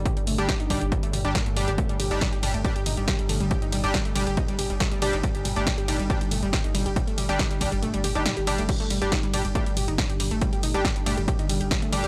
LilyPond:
<<
  \new Staff \with { instrumentName = "Analog polysynth" } { \time 4/4 \key c \dorian \tempo 4 = 139 r8. <g d' g'>16 r8 <g d' g'>16 r4 <g d' g'>16 r8 <g d' g'>16 r16 | r8. <g d' g'>16 r8 <g d' g'>16 r16 <g d' g'>16 r4. r16 | r8. <g d' g'>16 r8 <g d' g'>16 r4. r16 <g d' g'>16 r16 | r8. <g d' g'>16 r8 <g d' g'>16 r16 <g d' g'>16 r4. r16 |
r8. <g d' g'>16 r8 <g d' g'>16 r4 <g d' g'>16 r8 <g d' g'>16 r16 | r8. <g d' g'>16 r8 <g d' g'>16 r16 <g d' g'>16 r4. r16 | r8. <g d' g'>16 r8 <g d' g'>16 r4. r16 <g d' g'>16 r16 | }
  \new Staff \with { instrumentName = "Synth arpeggio sound" } { \time 4/4 \key c \dorian g'16 g16 a16 g16 g'16 ees'16 g16 g'16 g16 a16 g16 d'16 bes16 a16 g16 g'16 | a16 g16 g'16 ees'16 g16 g'16 g16 a16 g16 g'16 ees'16 g16 g'16 g16 a16 g16 | g'16 ees'16 g16 g'16 g16 a16 g16 g'16 ees'16 g16 g'16 g16 a16 g16 g'16 ees'16 | g16 g'16 g16 a16 g16 g'16 ees'16 g16 g'16 g16 a16 g16 g'16 ees'16 g16 g'16 |
g16 a16 g16 g'16 ees'16 g16 g'16 g16 a16 g16 g'16 ees'16 g16 g'16 g16 a16 | g16 a16 g16 g'16 ees'16 g16 g'16 g16 a16 g16 g'16 ees'16 g16 g'16 g16 a16 | g16 g'16 ees'16 g16 g'16 g16 a16 g16 g'16 ees'16 g16 g'16 g16 a16 g16 g'16 | }
  \new Staff \with { instrumentName = "Synth drone" } { \clef bass \time 4/4 \key c \dorian <g, d>1~ | <g, d>1~ | <g, d>1~ | <g, d>1~ |
<g, d>1 | <g, d>1~ | <g, d>1 | }
  \new Staff \with { instrumentName = "Sub bass" } { \clef bass \time 4/4 \key c \dorian r16 g,,16 g,,16 g,,16 r8 g,,16 g,,16 r16 g,,16 g,,16 g,,16 r16 g,,16 g,,16 g,,16 | r16 g,,16 g,,16 g,,16 r8 g,,16 g,,16 r16 g,,16 g,,16 g,,16 r16 g,,16 g,,16 g,,16 | r16 g,,16 g,,16 g,,16 r8 g,,16 g,,16 r16 g,,16 g,,16 g,,16 r16 g,,16 g,,16 g,,16 | r16 g,,16 g,,16 g,,16 r8 g,,16 g,,16 r16 g,,16 g,,16 g,,16 r16 g,,16 g,,16 g,,16 |
r16 g,,16 g,,16 g,,16 r8 g,,16 g,,16 r16 g,,16 g,,16 g,,16 r16 g,,16 g,,16 g,,16 | r16 g,,16 g,,16 g,,16 r8 g,,16 g,,16 r16 g,,16 g,,16 g,,16 r16 g,,16 g,,16 g,,16 | r16 g,,16 g,,16 g,,16 r8 g,,16 g,,16 r16 g,,16 g,,16 g,,16 r16 g,,16 g,,16 g,,16 | }
  \new DrumStaff \with { instrumentName = "Drums" } \drummode { \time 4/4 <hh bd toml>16 hh16 <hho toml>16 hh16 <hh bd sn toml>16 hh16 <hho bd toml>16 hh16 <hh bd toml>16 hh16 <hho toml>16 hh16 <hh bd sn toml>16 hh16 <hho toml>16 hh16 | <hh bd toml>16 hh16 <hho cymr toml>16 hh16 <hh bd sn toml>16 hh16 <hho cymr toml>16 hh16 <hh bd toml>16 hh16 <hho cymr toml>16 hh16 <hh bd sn toml>16 hh16 <hho cymr toml>16 hh16 | <hh bd toml>16 hh16 <hho cymr toml>16 hh16 <hh bd sn toml>16 hh16 <hho cymr toml>16 hh16 <hh bd toml>16 hh16 <hho cymr toml>16 hh16 <hh bd sn toml>16 hh16 <hho cymr toml>16 hh16 | <hh bd toml>16 hh16 <hho cymr toml>16 hh16 <hh bd sn toml>16 hh16 <hho cymr toml>16 hh16 <hh bd toml>16 hh16 <hho cymr toml>16 hh16 <hh bd sn toml>16 hh16 <hho cymr toml>16 hh16 |
<hh bd toml>16 hh16 <hho cymr toml>16 <hh sn>16 <hh bd sn toml>16 hh16 <hho bd cymr toml>16 hh16 <hh toml>16 hh16 <hho cymr toml>16 hh16 <hh sn toml>16 hh16 <hho cymr toml>16 hh16 | <cymc hh bd toml>16 hh16 <hho cymr toml>16 hh16 <hh bd sn toml>16 hh16 <hho cymr toml>16 hh16 <hh bd toml>16 hh16 <hho cymr toml>16 hh16 <hh bd sn toml>16 hh16 <hho cymr toml>16 hh16 | <hh bd toml>16 hh16 <hho cymr toml>16 hh16 <hh bd sn toml>16 hh16 <hho cymr toml>16 hh16 <hh bd toml>16 hh16 <hho cymr toml>16 hh16 <hh bd sn toml>16 hh16 <hho cymr toml>16 hh16 | }
>>